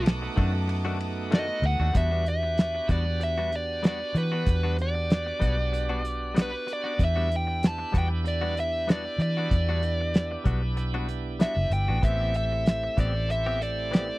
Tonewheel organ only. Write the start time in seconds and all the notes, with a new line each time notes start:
Already playing: A3 B3 D#4 F#4
1.92 B3 D4 F#4 G4
6.97 B3 D4 E4 G4
12.01 A3 C4 E4 G4